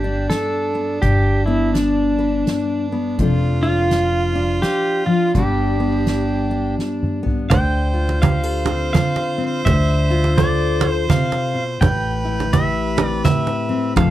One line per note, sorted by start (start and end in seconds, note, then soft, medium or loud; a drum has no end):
0.00 0.26 G1 medium
0.00 1.02 G2 medium
0.00 0.74 B3 soft
0.00 3.21 D4 medium
0.00 0.29 G4 medium
0.04 0.32 D4 medium
0.30 1.75 D4 medium
0.30 1.01 A4 medium
0.30 snare medium
0.30 closed hi-hat soft
0.75 0.99 B3 medium
1.02 2.43 G1 medium
1.02 3.19 G2 medium
1.02 1.42 G4 medium
1.02 kick medium
1.02 closed hi-hat soft
1.46 2.91 B3 medium
1.46 1.75 E4 medium
1.74 2.86 D4 medium
1.74 2.48 D4 medium
1.74 snare medium
1.74 closed hi-hat soft
2.19 3.15 B4 medium
2.47 3.20 D4 medium
2.47 snare medium
2.47 closed hi-hat soft
2.92 3.16 B3 soft
3.19 4.59 F1 medium
3.19 5.05 F3 medium
3.19 3.63 D4 medium
3.19 5.35 F4 loud
3.19 5.33 A4 medium
3.19 kick medium
3.19 closed hi-hat soft
3.63 3.91 D4 medium
3.63 4.59 F4 medium
3.91 4.35 D4 medium
3.91 snare medium
3.91 closed hi-hat soft
4.35 5.37 D4 medium
4.62 5.06 G4 medium
4.62 snare medium
4.62 closed hi-hat soft
5.06 5.35 F3 medium
5.06 5.35 F4 medium
5.35 6.75 G1 medium
5.35 7.51 G2 medium
5.35 7.48 G3 medium
5.35 5.79 B3 medium
5.35 7.18 D4 medium
5.35 6.07 D4 medium
5.35 6.75 G4 medium
5.35 kick medium
5.35 closed hi-hat soft
5.80 7.22 B3 medium
6.07 6.50 D4 soft
6.07 snare medium
6.07 closed hi-hat soft
6.51 6.79 D4 medium
6.79 7.93 D4 medium
6.79 snare soft
7.03 mid tom soft
7.23 7.47 B3 medium
7.23 floor tom medium
7.50 8.90 D2 medium
7.50 9.62 D3 medium
7.50 11.82 C5 loud
7.50 8.21 G5 medium
7.50 kick medium
7.50 cajon bass loud
7.50 cajon slap medium
7.50 closed hi-hat soft
7.94 8.93 F4 soft
8.09 cajon slap medium
8.22 8.44 G4 medium
8.22 8.90 F5 medium
8.22 cajon bass loud
8.22 closed hi-hat soft
8.44 9.66 A4 soft
8.65 9.37 C4 medium
8.65 cajon slap medium
8.93 9.62 F4 medium
8.93 9.61 F5 medium
8.93 cajon bass medium
8.93 snare medium
8.93 closed hi-hat soft
9.16 cajon slap medium
9.38 9.69 C4 medium
9.65 11.05 D2 medium
9.65 11.09 D3 medium
9.65 10.33 E5 medium
9.65 kick medium
9.65 cajon bass medium
9.65 cajon slap medium
9.65 closed hi-hat soft
10.10 11.78 F4 medium
10.24 cajon slap medium
10.37 12.53 A4 medium
10.37 10.93 D5 medium
10.37 cajon bass medium
10.37 closed hi-hat soft
10.81 cajon slap medium
10.93 11.12 C5 medium
11.09 11.53 C3 medium
11.09 11.63 F5 medium
11.09 cajon bass medium
11.09 snare medium
11.09 closed hi-hat medium
11.32 cajon slap medium
11.54 11.81 B2 medium
11.81 13.21 A1 medium
11.81 13.93 A2 medium
11.81 13.96 B4 loud
11.81 12.53 G5 medium
11.81 kick medium
11.81 cajon bass loud
11.81 cajon slap medium
11.81 closed hi-hat soft
12.25 13.25 E4 soft
12.40 cajon slap medium
12.53 13.97 G4 medium
12.53 13.08 E5 medium
12.53 cajon bass medium
12.53 closed hi-hat soft
12.97 13.69 C4 medium
12.97 cajon slap loud
13.08 13.24 D5 medium
13.24 13.94 E4 medium
13.24 13.92 E5 medium
13.24 cajon bass medium
13.24 snare medium
13.24 closed hi-hat soft
13.47 cajon slap medium
13.69 14.10 C4 medium
13.96 14.10 F1 medium
13.96 14.10 F3 medium
13.96 14.10 A4 medium
13.96 14.10 F5 medium
13.96 kick medium
13.96 cajon bass medium
13.96 cajon slap medium
13.96 closed hi-hat soft